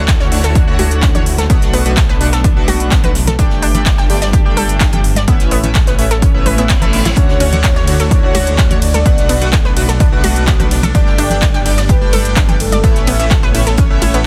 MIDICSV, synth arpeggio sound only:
0, 0, Header, 1, 2, 480
1, 0, Start_track
1, 0, Key_signature, 2, "major"
1, 0, Tempo, 472441
1, 1522, Time_signature, 4, 2, 24, 8
1, 14493, End_track
2, 0, Start_track
2, 0, Title_t, "Synth arpeggio sound"
2, 0, Program_c, 0, 84
2, 84, Note_on_c, 0, 69, 81
2, 123, Note_off_c, 0, 69, 0
2, 207, Note_on_c, 0, 73, 77
2, 270, Note_off_c, 0, 73, 0
2, 448, Note_on_c, 0, 69, 75
2, 510, Note_off_c, 0, 69, 0
2, 564, Note_on_c, 0, 62, 86
2, 630, Note_off_c, 0, 62, 0
2, 803, Note_on_c, 0, 66, 97
2, 904, Note_off_c, 0, 66, 0
2, 1042, Note_on_c, 0, 61, 84
2, 1083, Note_off_c, 0, 61, 0
2, 1167, Note_on_c, 0, 73, 80
2, 1229, Note_off_c, 0, 73, 0
2, 1406, Note_on_c, 0, 69, 81
2, 1469, Note_off_c, 0, 69, 0
2, 1523, Note_on_c, 0, 59, 83
2, 1590, Note_off_c, 0, 59, 0
2, 1762, Note_on_c, 0, 59, 76
2, 1803, Note_off_c, 0, 59, 0
2, 2002, Note_on_c, 0, 69, 79
2, 2043, Note_off_c, 0, 69, 0
2, 2127, Note_on_c, 0, 71, 78
2, 2189, Note_off_c, 0, 71, 0
2, 2366, Note_on_c, 0, 69, 75
2, 2429, Note_off_c, 0, 69, 0
2, 2483, Note_on_c, 0, 62, 87
2, 2550, Note_off_c, 0, 62, 0
2, 2723, Note_on_c, 0, 66, 97
2, 2823, Note_off_c, 0, 66, 0
2, 2963, Note_on_c, 0, 59, 86
2, 3003, Note_off_c, 0, 59, 0
2, 3087, Note_on_c, 0, 71, 77
2, 3149, Note_off_c, 0, 71, 0
2, 3326, Note_on_c, 0, 69, 78
2, 3389, Note_off_c, 0, 69, 0
2, 3442, Note_on_c, 0, 62, 88
2, 3509, Note_off_c, 0, 62, 0
2, 3682, Note_on_c, 0, 62, 80
2, 3723, Note_off_c, 0, 62, 0
2, 3922, Note_on_c, 0, 74, 83
2, 3963, Note_off_c, 0, 74, 0
2, 4046, Note_on_c, 0, 79, 81
2, 4109, Note_off_c, 0, 79, 0
2, 4286, Note_on_c, 0, 74, 77
2, 4349, Note_off_c, 0, 74, 0
2, 4402, Note_on_c, 0, 67, 84
2, 4469, Note_off_c, 0, 67, 0
2, 4642, Note_on_c, 0, 69, 97
2, 4743, Note_off_c, 0, 69, 0
2, 4882, Note_on_c, 0, 62, 86
2, 4923, Note_off_c, 0, 62, 0
2, 5007, Note_on_c, 0, 79, 76
2, 5069, Note_off_c, 0, 79, 0
2, 5247, Note_on_c, 0, 74, 78
2, 5310, Note_off_c, 0, 74, 0
2, 5363, Note_on_c, 0, 59, 88
2, 5430, Note_off_c, 0, 59, 0
2, 5604, Note_on_c, 0, 59, 77
2, 5643, Note_off_c, 0, 59, 0
2, 5844, Note_on_c, 0, 69, 81
2, 5883, Note_off_c, 0, 69, 0
2, 5968, Note_on_c, 0, 71, 78
2, 6030, Note_off_c, 0, 71, 0
2, 6207, Note_on_c, 0, 69, 79
2, 6269, Note_off_c, 0, 69, 0
2, 6322, Note_on_c, 0, 61, 87
2, 6390, Note_off_c, 0, 61, 0
2, 6563, Note_on_c, 0, 71, 74
2, 6603, Note_off_c, 0, 71, 0
2, 6687, Note_on_c, 0, 59, 75
2, 6749, Note_off_c, 0, 59, 0
2, 6803, Note_on_c, 0, 59, 83
2, 6870, Note_off_c, 0, 59, 0
2, 6926, Note_on_c, 0, 69, 100
2, 6989, Note_off_c, 0, 69, 0
2, 7166, Note_on_c, 0, 64, 81
2, 7229, Note_off_c, 0, 64, 0
2, 7281, Note_on_c, 0, 61, 81
2, 7349, Note_off_c, 0, 61, 0
2, 7522, Note_on_c, 0, 61, 80
2, 7562, Note_off_c, 0, 61, 0
2, 7762, Note_on_c, 0, 69, 85
2, 7802, Note_off_c, 0, 69, 0
2, 7885, Note_on_c, 0, 73, 79
2, 7949, Note_off_c, 0, 73, 0
2, 8126, Note_on_c, 0, 69, 76
2, 8189, Note_off_c, 0, 69, 0
2, 8241, Note_on_c, 0, 62, 82
2, 8309, Note_off_c, 0, 62, 0
2, 8482, Note_on_c, 0, 66, 100
2, 8583, Note_off_c, 0, 66, 0
2, 8722, Note_on_c, 0, 61, 84
2, 8763, Note_off_c, 0, 61, 0
2, 8846, Note_on_c, 0, 73, 79
2, 8909, Note_off_c, 0, 73, 0
2, 9086, Note_on_c, 0, 69, 78
2, 9149, Note_off_c, 0, 69, 0
2, 9201, Note_on_c, 0, 59, 88
2, 9269, Note_off_c, 0, 59, 0
2, 9441, Note_on_c, 0, 59, 78
2, 9482, Note_off_c, 0, 59, 0
2, 9682, Note_on_c, 0, 69, 83
2, 9723, Note_off_c, 0, 69, 0
2, 9805, Note_on_c, 0, 71, 81
2, 9869, Note_off_c, 0, 71, 0
2, 10046, Note_on_c, 0, 69, 75
2, 10109, Note_off_c, 0, 69, 0
2, 10161, Note_on_c, 0, 62, 82
2, 10229, Note_off_c, 0, 62, 0
2, 10402, Note_on_c, 0, 66, 101
2, 10503, Note_off_c, 0, 66, 0
2, 10643, Note_on_c, 0, 59, 89
2, 10683, Note_off_c, 0, 59, 0
2, 10766, Note_on_c, 0, 71, 76
2, 10829, Note_off_c, 0, 71, 0
2, 11006, Note_on_c, 0, 69, 79
2, 11069, Note_off_c, 0, 69, 0
2, 11122, Note_on_c, 0, 62, 87
2, 11190, Note_off_c, 0, 62, 0
2, 11362, Note_on_c, 0, 62, 81
2, 11403, Note_off_c, 0, 62, 0
2, 11604, Note_on_c, 0, 74, 85
2, 11643, Note_off_c, 0, 74, 0
2, 11727, Note_on_c, 0, 79, 82
2, 11789, Note_off_c, 0, 79, 0
2, 11968, Note_on_c, 0, 74, 76
2, 12030, Note_off_c, 0, 74, 0
2, 12084, Note_on_c, 0, 67, 88
2, 12150, Note_off_c, 0, 67, 0
2, 12324, Note_on_c, 0, 69, 101
2, 12424, Note_off_c, 0, 69, 0
2, 12564, Note_on_c, 0, 62, 86
2, 12603, Note_off_c, 0, 62, 0
2, 12687, Note_on_c, 0, 79, 75
2, 12749, Note_off_c, 0, 79, 0
2, 12927, Note_on_c, 0, 74, 79
2, 12989, Note_off_c, 0, 74, 0
2, 13043, Note_on_c, 0, 59, 86
2, 13110, Note_off_c, 0, 59, 0
2, 13282, Note_on_c, 0, 59, 78
2, 13323, Note_off_c, 0, 59, 0
2, 13522, Note_on_c, 0, 69, 85
2, 13563, Note_off_c, 0, 69, 0
2, 13646, Note_on_c, 0, 71, 81
2, 13709, Note_off_c, 0, 71, 0
2, 13886, Note_on_c, 0, 69, 76
2, 13949, Note_off_c, 0, 69, 0
2, 14003, Note_on_c, 0, 61, 87
2, 14070, Note_off_c, 0, 61, 0
2, 14243, Note_on_c, 0, 64, 77
2, 14283, Note_off_c, 0, 64, 0
2, 14367, Note_on_c, 0, 59, 98
2, 14404, Note_off_c, 0, 59, 0
2, 14493, End_track
0, 0, End_of_file